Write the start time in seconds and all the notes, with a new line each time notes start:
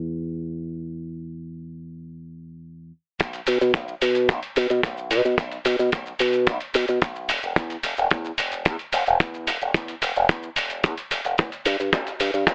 Already playing: E2
3.20 B1, kick, closed hi-hat, shaker
3.33 closed hi-hat, shaker
3.47 B2, open hi-hat, shaker
3.61 B2, shaker
3.74 kick, closed hi-hat, shaker
3.88 shaker
4.02 B2, open hi-hat, shaker
4.15 closed hi-hat, shaker
4.29 B1, kick, closed hi-hat, shaker
4.43 closed hi-hat, shaker
4.56 B2, open hi-hat, shaker
4.70 B2, closed hi-hat, shaker
4.83 B1, kick, closed hi-hat, shaker
4.97 shaker
5.11 B2, open hi-hat, shaker
5.25 B2, shaker
5.38 kick, closed hi-hat, shaker
5.51 closed hi-hat, shaker
5.65 B2, open hi-hat, shaker
5.79 B2, shaker
5.92 kick, closed hi-hat, shaker
6.06 shaker
6.19 B2, open hi-hat, shaker
6.33 closed hi-hat, shaker
6.47 B1, kick, closed hi-hat, shaker
6.60 closed hi-hat, shaker
6.74 B2, open hi-hat, shaker
6.88 B2, closed hi-hat, shaker
7.02 kick, closed hi-hat, shaker
7.16 shaker
7.29 E1, open hi-hat, shaker
7.43 E1, shaker
7.56 E2, kick, closed hi-hat, shaker
7.70 closed hi-hat, shaker
7.83 E1, open hi-hat, shaker
7.97 E1, shaker
8.11 E2, kick, closed hi-hat, shaker
8.25 shaker
8.38 E1, open hi-hat, shaker
8.52 closed hi-hat, shaker
8.65 E2, kick, closed hi-hat, shaker
8.79 closed hi-hat, shaker
8.93 E1, open hi-hat, shaker
9.06 E1, closed hi-hat, shaker
9.20 E2, kick, closed hi-hat, shaker
9.34 shaker
9.47 E1, open hi-hat, shaker
9.61 E1, shaker
9.74 E2, kick, closed hi-hat, shaker
9.88 closed hi-hat, shaker
10.02 E1, open hi-hat, shaker
10.16 E1, shaker
10.29 E2, kick, closed hi-hat, shaker
10.43 shaker
10.56 E1, open hi-hat, shaker
10.70 closed hi-hat, shaker
10.84 E2, kick, closed hi-hat, shaker
10.97 closed hi-hat, shaker
11.11 E1, open hi-hat, shaker
11.25 E1, closed hi-hat, shaker
11.38 E2, kick, closed hi-hat, shaker
11.52 closed hi-hat, shaker
11.65 G2, open hi-hat, shaker
11.80 G2, shaker
11.93 kick, closed hi-hat, mid tom, shaker
12.07 closed hi-hat, shaker
12.20 G2, open hi-hat, shaker
12.34 G2, shaker
12.47 kick, closed hi-hat, mid tom, shaker